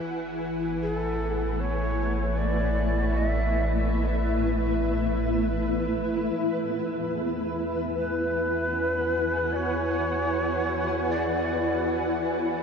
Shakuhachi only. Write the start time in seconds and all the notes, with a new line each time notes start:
0.82 G#4
0.95 A4
1.60 C#5
2.37 D5
3.17 D#5
3.28 E5
7.98 B4
9.52 C#5 D5
11.09 D5